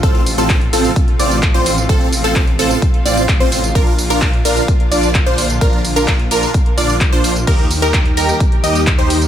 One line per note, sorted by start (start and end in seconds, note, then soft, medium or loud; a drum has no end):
0.00 0.36 A1 loud
0.00 3.72 C3 medium
0.00 7.43 F3 medium
0.00 3.71 A3 medium
0.00 0.21 C4 loud
0.00 7.43 F4 medium
0.00 0.21 F4 medium
0.00 0.21 A4 loud
0.00 kick loud
0.00 closed hi-hat medium
0.00 tambourine soft
0.15 closed hi-hat soft
0.26 open hi-hat loud
0.26 tambourine medium
0.38 0.71 A1 loud
0.38 0.56 C4 medium
0.38 0.56 F4 medium
0.38 0.56 A4 loud
0.38 closed hi-hat soft
0.38 tambourine soft
0.50 kick loud
0.50 clap loud
0.50 closed hi-hat medium
0.50 tambourine soft
0.61 closed hi-hat soft
0.73 0.88 A1 loud
0.73 0.91 C4 loud
0.73 0.91 F4 medium
0.73 0.91 A4 loud
0.73 open hi-hat medium
0.73 tambourine medium
0.85 closed hi-hat soft
0.85 tambourine soft
0.96 kick loud
0.96 closed hi-hat medium
0.96 tambourine soft
1.08 closed hi-hat soft
1.19 1.52 A1 loud
1.19 1.37 C4 medium
1.19 1.37 F4 medium
1.19 1.37 D5 loud
1.19 open hi-hat loud
1.19 tambourine medium
1.31 closed hi-hat soft
1.31 tambourine soft
1.43 kick loud
1.43 clap loud
1.43 closed hi-hat medium
1.43 tambourine soft
1.54 1.87 A1 loud
1.54 1.72 C4 medium
1.54 1.72 F4 medium
1.54 1.72 C5 loud
1.54 closed hi-hat soft
1.66 open hi-hat loud
1.66 tambourine medium
1.78 closed hi-hat soft
1.78 tambourine soft
1.89 2.22 A1 loud
1.89 2.07 C4 medium
1.89 2.07 F4 medium
1.89 2.07 A4 loud
1.89 kick loud
1.89 closed hi-hat medium
1.89 tambourine soft
2.01 closed hi-hat soft
2.13 open hi-hat loud
2.13 tambourine medium
2.24 2.57 A1 loud
2.24 2.42 C4 medium
2.24 2.42 F4 medium
2.24 2.42 A4 loud
2.24 closed hi-hat soft
2.24 tambourine soft
2.36 kick loud
2.36 clap loud
2.36 closed hi-hat medium
2.36 tambourine soft
2.47 closed hi-hat soft
2.59 2.74 A1 loud
2.59 2.77 C4 loud
2.59 2.77 F4 medium
2.59 2.77 A4 loud
2.59 open hi-hat medium
2.59 tambourine medium
2.71 closed hi-hat soft
2.71 tambourine soft
2.82 kick loud
2.82 closed hi-hat medium
2.82 tambourine soft
2.94 closed hi-hat soft
3.05 3.38 A1 loud
3.05 3.23 C4 medium
3.05 3.23 F4 medium
3.05 3.23 D5 loud
3.05 open hi-hat loud
3.05 tambourine medium
3.17 closed hi-hat soft
3.17 tambourine soft
3.29 kick loud
3.29 clap loud
3.29 closed hi-hat medium
3.29 tambourine soft
3.40 3.73 A1 loud
3.40 3.58 C4 medium
3.40 3.58 F4 medium
3.40 3.58 C5 loud
3.40 closed hi-hat soft
3.52 open hi-hat medium
3.52 tambourine medium
3.64 closed hi-hat soft
3.64 tambourine soft
3.75 4.08 A#1 loud
3.75 7.44 D3 medium
3.75 9.28 A#3 medium
3.75 3.93 D4 medium
3.75 3.93 F4 medium
3.75 3.93 A#4 loud
3.75 kick loud
3.75 closed hi-hat loud
3.75 tambourine soft
3.87 closed hi-hat soft
3.99 open hi-hat loud
3.99 tambourine medium
4.10 4.43 A#1 loud
4.10 4.28 D4 medium
4.10 4.28 F4 medium
4.10 4.28 A#4 loud
4.10 closed hi-hat soft
4.10 tambourine soft
4.22 kick loud
4.22 clap loud
4.22 closed hi-hat loud
4.22 tambourine soft
4.33 closed hi-hat soft
4.45 4.60 A#1 loud
4.45 4.63 D4 loud
4.45 4.63 F4 medium
4.45 4.63 A#4 loud
4.45 open hi-hat medium
4.45 tambourine medium
4.57 closed hi-hat soft
4.57 tambourine soft
4.68 kick loud
4.68 closed hi-hat medium
4.68 tambourine soft
4.80 closed hi-hat soft
4.92 5.24 A#1 loud
4.92 5.09 D4 medium
4.92 5.09 F4 medium
4.92 5.09 D5 loud
4.92 open hi-hat loud
4.92 tambourine medium
5.03 closed hi-hat soft
5.03 tambourine soft
5.15 kick loud
5.15 clap loud
5.15 closed hi-hat loud
5.15 tambourine soft
5.26 5.59 A#1 loud
5.26 5.44 D4 loud
5.26 5.44 F4 medium
5.26 5.44 C5 loud
5.26 closed hi-hat soft
5.38 open hi-hat medium
5.38 tambourine medium
5.50 closed hi-hat soft
5.50 tambourine soft
5.61 5.94 A#1 loud
5.61 5.79 D4 loud
5.61 5.79 F4 medium
5.61 5.79 A#4 loud
5.61 kick loud
5.61 closed hi-hat loud
5.61 tambourine soft
5.73 closed hi-hat soft
5.85 open hi-hat loud
5.85 tambourine medium
5.96 6.29 A#1 loud
5.96 6.14 D4 medium
5.96 6.14 F4 medium
5.96 6.14 A#4 loud
5.96 closed hi-hat soft
5.96 tambourine soft
6.08 kick loud
6.08 clap loud
6.08 closed hi-hat loud
6.08 tambourine soft
6.19 closed hi-hat soft
6.31 6.46 A#1 loud
6.31 6.49 D4 loud
6.31 6.49 F4 loud
6.31 6.49 A#4 loud
6.31 open hi-hat medium
6.31 tambourine medium
6.43 closed hi-hat soft
6.43 tambourine soft
6.54 kick loud
6.54 closed hi-hat loud
6.54 tambourine soft
6.66 closed hi-hat soft
6.78 7.10 A#1 loud
6.78 6.95 D4 medium
6.78 6.95 F4 medium
6.78 6.95 D5 loud
6.78 open hi-hat loud
6.78 tambourine medium
6.89 closed hi-hat soft
6.89 tambourine soft
7.01 kick loud
7.01 clap loud
7.01 closed hi-hat loud
7.01 tambourine soft
7.12 7.45 A#1 loud
7.12 7.30 D4 loud
7.12 7.30 F4 medium
7.12 7.30 C5 loud
7.12 closed hi-hat soft
7.24 open hi-hat medium
7.24 tambourine medium
7.36 closed hi-hat soft
7.36 tambourine soft
7.47 7.80 D#2 loud
7.47 9.28 D#3 medium
7.47 9.28 G3 medium
7.47 7.65 D#4 loud
7.47 9.28 G4 medium
7.47 7.65 G4 medium
7.47 7.65 A#4 loud
7.47 kick loud
7.47 closed hi-hat loud
7.47 crash medium
7.47 tambourine soft
7.59 closed hi-hat soft
7.71 open hi-hat loud
7.71 tambourine medium
7.82 8.15 D#2 loud
7.82 8.00 D#4 medium
7.82 8.00 G4 medium
7.82 8.00 A#4 loud
7.82 closed hi-hat soft
7.82 tambourine soft
7.94 kick loud
7.94 clap loud
7.94 closed hi-hat loud
7.94 tambourine soft
8.06 closed hi-hat soft
8.17 8.32 D#2 loud
8.17 8.35 D#4 loud
8.17 8.35 G4 medium
8.17 8.35 A#4 loud
8.17 open hi-hat medium
8.17 tambourine medium
8.29 closed hi-hat soft
8.29 tambourine soft
8.40 kick loud
8.40 closed hi-hat medium
8.40 tambourine soft
8.52 closed hi-hat soft
8.64 8.96 D#2 loud
8.64 8.81 D#4 medium
8.64 8.81 G4 medium
8.64 8.81 D#5 loud
8.64 open hi-hat loud
8.64 tambourine medium
8.75 closed hi-hat soft
8.75 tambourine soft
8.87 kick loud
8.87 clap loud
8.87 closed hi-hat loud
8.87 tambourine soft
8.99 9.28 D#2 loud
8.99 9.16 D#4 medium
8.99 9.16 G4 medium
8.99 9.16 C5 loud
8.99 closed hi-hat soft
9.10 open hi-hat loud
9.10 tambourine medium
9.22 closed hi-hat soft
9.22 tambourine soft